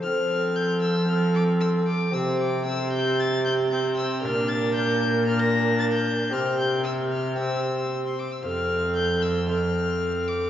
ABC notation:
X:1
M:4/4
L:1/16
Q:1/4=114
K:F
V:1 name="Violin"
f'4 g'2 e'2 f'2 d'2 e'2 d'2 | e'2 d'2 e'2 g'2 a'2 g'2 g'2 e'2 | f'2 a'2 g'4 f' b'3 a' g'3 | f'2 g'2 e'2 f'2 e'4 z c' d' e' |
f'4 g'2 e'2 f'6 d'2 |]
V:2 name="Recorder"
A8 A8 | G4 G8 G4 | B8 B8 | G6 z2 G6 z2 |
A8 A8 |]
V:3 name="Lute"
[CAc]16 | [CGc]16 | [DBf]16 | [CGc]8 [CGc]8 |
[A,Fc]8 [A,Fc]8 |]
V:4 name="Lute" clef=bass
F,16 | C,16 | B,,16 | C,12- C,2 z2 |
F,,16 |]
V:5 name="Viola"
C8 C8 | C4 C8 C4 | D8 D8 | C8 C6 z2 |
C8 C8 |]
V:6 name="Cello" clef=bass
F,16 | C,16 | B,,16 | C,12- C,2 z2 |
F,,16 |]